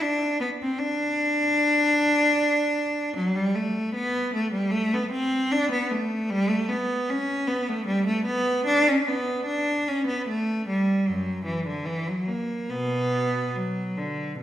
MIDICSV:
0, 0, Header, 1, 2, 480
1, 0, Start_track
1, 0, Tempo, 785340
1, 18, Time_signature, 4, 2, 24, 8
1, 2898, Tempo, 793651
1, 6738, Tempo, 826446
1, 8676, End_track
2, 0, Start_track
2, 0, Title_t, "Cello"
2, 0, Program_c, 0, 42
2, 7, Note_on_c, 0, 62, 101
2, 248, Note_on_c, 0, 59, 81
2, 252, Note_off_c, 0, 62, 0
2, 297, Note_off_c, 0, 59, 0
2, 379, Note_on_c, 0, 60, 88
2, 482, Note_on_c, 0, 62, 121
2, 495, Note_off_c, 0, 60, 0
2, 1930, Note_off_c, 0, 62, 0
2, 1936, Note_on_c, 0, 54, 97
2, 2049, Note_on_c, 0, 55, 99
2, 2054, Note_off_c, 0, 54, 0
2, 2172, Note_on_c, 0, 57, 93
2, 2173, Note_off_c, 0, 55, 0
2, 2414, Note_on_c, 0, 59, 107
2, 2415, Note_off_c, 0, 57, 0
2, 2652, Note_off_c, 0, 59, 0
2, 2657, Note_on_c, 0, 57, 93
2, 2768, Note_on_c, 0, 55, 89
2, 2775, Note_off_c, 0, 57, 0
2, 2878, Note_on_c, 0, 57, 108
2, 2891, Note_off_c, 0, 55, 0
2, 3008, Note_off_c, 0, 57, 0
2, 3019, Note_on_c, 0, 59, 92
2, 3123, Note_on_c, 0, 60, 108
2, 3138, Note_off_c, 0, 59, 0
2, 3366, Note_off_c, 0, 60, 0
2, 3368, Note_on_c, 0, 62, 116
2, 3489, Note_on_c, 0, 59, 93
2, 3493, Note_off_c, 0, 62, 0
2, 3606, Note_on_c, 0, 57, 92
2, 3611, Note_off_c, 0, 59, 0
2, 3841, Note_on_c, 0, 55, 117
2, 3852, Note_off_c, 0, 57, 0
2, 3956, Note_on_c, 0, 57, 100
2, 3970, Note_off_c, 0, 55, 0
2, 4076, Note_on_c, 0, 59, 95
2, 4088, Note_off_c, 0, 57, 0
2, 4322, Note_on_c, 0, 61, 104
2, 4329, Note_off_c, 0, 59, 0
2, 4550, Note_on_c, 0, 59, 93
2, 4570, Note_off_c, 0, 61, 0
2, 4681, Note_on_c, 0, 57, 91
2, 4684, Note_off_c, 0, 59, 0
2, 4790, Note_on_c, 0, 55, 99
2, 4809, Note_off_c, 0, 57, 0
2, 4909, Note_on_c, 0, 57, 96
2, 4921, Note_off_c, 0, 55, 0
2, 5022, Note_on_c, 0, 59, 104
2, 5041, Note_off_c, 0, 57, 0
2, 5269, Note_on_c, 0, 62, 126
2, 5277, Note_off_c, 0, 59, 0
2, 5403, Note_off_c, 0, 62, 0
2, 5403, Note_on_c, 0, 61, 93
2, 5520, Note_on_c, 0, 59, 96
2, 5533, Note_off_c, 0, 61, 0
2, 5748, Note_on_c, 0, 62, 100
2, 5771, Note_off_c, 0, 59, 0
2, 5999, Note_off_c, 0, 62, 0
2, 6005, Note_on_c, 0, 61, 87
2, 6122, Note_on_c, 0, 59, 85
2, 6132, Note_off_c, 0, 61, 0
2, 6248, Note_off_c, 0, 59, 0
2, 6249, Note_on_c, 0, 57, 93
2, 6489, Note_off_c, 0, 57, 0
2, 6492, Note_on_c, 0, 55, 89
2, 6728, Note_on_c, 0, 54, 79
2, 6730, Note_off_c, 0, 55, 0
2, 6731, Note_on_c, 0, 42, 66
2, 6947, Note_on_c, 0, 52, 76
2, 6950, Note_off_c, 0, 42, 0
2, 6966, Note_off_c, 0, 54, 0
2, 7074, Note_off_c, 0, 52, 0
2, 7078, Note_on_c, 0, 50, 74
2, 7183, Note_on_c, 0, 52, 86
2, 7200, Note_off_c, 0, 50, 0
2, 7313, Note_on_c, 0, 54, 77
2, 7315, Note_off_c, 0, 52, 0
2, 7427, Note_on_c, 0, 58, 81
2, 7441, Note_off_c, 0, 54, 0
2, 7673, Note_on_c, 0, 59, 93
2, 7678, Note_on_c, 0, 47, 74
2, 7681, Note_off_c, 0, 58, 0
2, 8148, Note_off_c, 0, 47, 0
2, 8169, Note_off_c, 0, 59, 0
2, 8171, Note_on_c, 0, 54, 83
2, 8411, Note_on_c, 0, 50, 78
2, 8415, Note_off_c, 0, 54, 0
2, 8652, Note_on_c, 0, 47, 69
2, 8654, Note_off_c, 0, 50, 0
2, 8676, Note_off_c, 0, 47, 0
2, 8676, End_track
0, 0, End_of_file